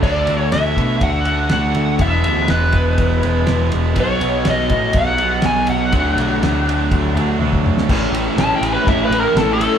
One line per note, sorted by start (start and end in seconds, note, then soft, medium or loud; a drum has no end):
0.03 0.26 D2 medium
0.03 0.52 D3 medium
0.03 0.51 A3 medium
0.03 0.29 D4 medium
0.03 0.28 F#4 medium
0.03 0.26 A4 medium
0.03 0.37 D5 medium
0.03 kick loud
0.03 crash loud
0.27 0.52 D2 medium
0.27 0.51 D4 medium
0.27 0.53 F#4 medium
0.27 0.53 A4 medium
0.27 ride medium
0.37 0.49 C#5 medium
0.52 0.76 D2 medium
0.52 1.01 A3 medium
0.52 0.77 D4 medium
0.52 0.75 F#4 medium
0.52 0.74 A4 medium
0.52 1.03 E5 loud
0.52 snare loud
0.52 ride medium
0.75 1.00 B2 medium
0.75 1.26 D4 medium
0.75 1.25 F#4 medium
0.75 1.24 A4 medium
0.75 kick medium
0.75 ride medium
1.01 1.48 D2 medium
1.01 1.51 F#5 loud
1.01 kick loud
1.01 ride medium
1.25 1.49 D4 medium
1.25 1.50 F#4 medium
1.25 1.50 A4 medium
1.25 ride medium
1.49 1.74 D2 medium
1.49 1.98 D3 medium
1.49 1.98 A3 medium
1.49 1.98 D4 loud
1.49 1.99 F#4 loud
1.49 1.99 A4 loud
1.49 2.02 F#5 medium
1.49 snare loud
1.49 ride medium
1.75 1.99 D2 medium
1.75 ride medium
1.98 2.23 E1 medium
1.98 3.94 E2 medium
1.98 3.93 B2 medium
1.98 2.47 E3 medium
1.98 2.25 G#3 medium
1.98 2.25 B3 medium
1.98 2.22 E4 medium
1.98 2.51 E5 loud
1.98 kick loud
1.98 ride medium
2.24 2.48 D2 medium
2.24 2.48 G#3 medium
2.24 2.50 B3 medium
2.24 2.50 E4 medium
2.24 ride medium
2.48 2.96 E1 medium
2.48 2.98 E3 medium
2.48 2.74 G#3 medium
2.48 2.74 B3 medium
2.48 2.72 E4 medium
2.48 3.68 B4 medium
2.48 snare loud
2.48 ride medium
2.72 3.23 G#3 medium
2.72 3.22 B3 medium
2.72 3.20 E4 medium
2.72 kick medium
2.72 ride medium
2.98 3.21 E1 medium
2.98 kick loud
2.98 ride medium
3.21 3.46 E1 medium
3.21 3.45 G#3 medium
3.21 3.45 B3 medium
3.21 3.46 E4 medium
3.21 ride medium
3.45 3.71 E1 medium
3.45 3.94 E3 medium
3.45 3.94 G#3 loud
3.45 3.95 B3 loud
3.45 3.95 E4 loud
3.45 snare loud
3.45 ride medium
3.72 3.95 E1 medium
3.72 ride medium
3.96 4.20 B1 loud
3.96 4.44 B2 medium
3.96 4.23 F#3 medium
3.96 4.21 B3 loud
3.96 4.19 D#4 medium
3.96 kick loud
3.96 ride medium
4.00 4.49 C#5 medium
4.20 4.44 B1 medium
4.20 4.46 F#3 medium
4.20 4.46 B3 medium
4.20 4.46 D#4 medium
4.20 ride medium
4.45 4.69 B1 medium
4.45 4.94 B2 medium
4.45 4.72 F#3 medium
4.45 4.70 B3 medium
4.45 4.69 D#4 medium
4.45 snare loud
4.45 ride loud
4.50 4.93 D#5 medium
4.70 4.93 A2 medium
4.70 5.20 F#3 medium
4.70 5.20 B3 medium
4.70 5.18 D#4 medium
4.70 kick medium
4.70 ride medium
4.93 5.41 B1 medium
4.93 5.46 F#5 medium
4.93 kick loud
4.93 ride loud
5.18 5.42 F#3 medium
5.18 5.43 B3 medium
5.18 5.44 D#4 medium
5.18 ride medium
5.42 5.67 B1 medium
5.42 5.91 B2 loud
5.42 5.91 F#3 loud
5.42 5.91 B3 loud
5.42 5.92 D#4 loud
5.42 snare loud
5.42 ride medium
5.46 5.69 G#5 loud
5.67 5.94 B1 medium
5.67 7.36 F#5 loud
5.67 ride medium
5.92 6.15 D2 medium
5.92 6.40 D3 medium
5.92 6.18 F#3 loud
5.92 6.16 A3 medium
5.92 6.15 D4 medium
5.92 kick loud
5.92 ride medium
6.16 6.40 B1 medium
6.16 6.41 F#3 medium
6.16 6.42 A3 medium
6.16 6.43 D4 medium
6.16 ride medium
6.41 6.88 D2 medium
6.41 6.90 D3 medium
6.41 6.67 F#3 medium
6.41 6.66 A3 medium
6.41 6.65 D4 medium
6.41 snare loud
6.41 ride medium
6.66 7.17 F#3 medium
6.66 7.16 A3 medium
6.66 7.14 D4 medium
6.66 ride medium
6.91 7.14 D2 medium
6.91 kick loud
6.91 ride medium
7.15 7.38 D2 medium
7.15 7.40 F#3 medium
7.15 7.41 A3 medium
7.15 7.42 D4 medium
7.15 ride medium
7.39 7.62 D2 medium
7.39 7.87 D3 medium
7.39 7.88 F#3 loud
7.39 7.88 A3 loud
7.39 high tom medium
7.43 7.89 D4 loud
7.53 kick medium
7.64 7.87 D2 medium
7.64 mid tom medium
7.78 snare medium
7.88 8.05 A1 medium
7.88 8.36 A2 medium
7.88 8.37 E3 loud
7.88 8.16 A3 medium
7.88 8.15 C#4 medium
7.88 8.13 E4 loud
7.88 kick loud
7.88 crash loud
8.11 8.28 A1 medium
8.11 8.39 E4 medium
8.11 ride medium
8.15 8.38 A3 medium
8.15 8.38 C#4 medium
8.36 8.53 A1 medium
8.36 9.14 A2 loud
8.36 8.86 E3 medium
8.36 8.64 A3 medium
8.36 8.62 C#4 loud
8.36 8.61 E4 loud
8.36 snare loud
8.36 ride loud
8.41 8.55 A5 loud
8.56 8.71 G5 medium
8.61 8.77 A1 medium
8.61 8.86 A3 medium
8.61 8.87 C#4 medium
8.61 8.88 E4 medium
8.61 ride medium
8.73 8.87 B4 medium
8.84 9.03 A1 medium
8.84 9.34 A2 medium
8.84 9.13 E3 medium
8.84 9.12 A3 medium
8.84 9.11 C#4 medium
8.84 kick loud
8.84 ride loud
8.88 9.11 E4 medium
8.88 9.03 E5 medium
9.04 9.19 B4 medium
9.10 9.26 A1 medium
9.10 9.34 E3 medium
9.10 9.34 A3 medium
9.10 9.35 C#4 medium
9.10 9.37 E4 medium
9.10 ride medium
9.14 9.61 A2 medium
9.20 9.38 A#4 medium
9.35 9.67 A1 loud
9.35 9.78 E3 medium
9.35 9.61 A3 medium
9.35 9.60 C#4 medium
9.35 9.59 E4 medium
9.35 9.52 A4 loud
9.35 snare loud
9.35 ride loud
9.54 9.78 A4 loud
9.60 9.78 A3 medium
9.60 9.78 C#4 medium
9.60 9.78 E4 medium
9.60 ride medium